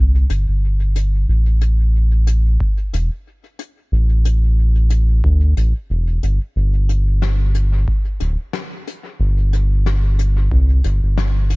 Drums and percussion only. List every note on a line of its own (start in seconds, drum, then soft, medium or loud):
0.30 closed hi-hat medium
0.96 closed hi-hat medium
1.61 closed hi-hat medium
2.27 closed hi-hat medium
2.60 kick loud
2.93 closed hi-hat medium
3.59 closed hi-hat medium
4.25 closed hi-hat medium
4.90 closed hi-hat medium
5.24 kick loud
5.57 closed hi-hat medium
6.23 closed hi-hat medium
6.89 closed hi-hat medium
7.22 snare medium
7.55 closed hi-hat medium
7.88 kick loud
8.20 closed hi-hat medium
8.53 snare medium
8.87 closed hi-hat medium
9.53 closed hi-hat medium
9.86 snare medium
10.19 closed hi-hat medium
10.51 kick medium
10.84 closed hi-hat medium
11.18 snare medium
11.50 closed hi-hat medium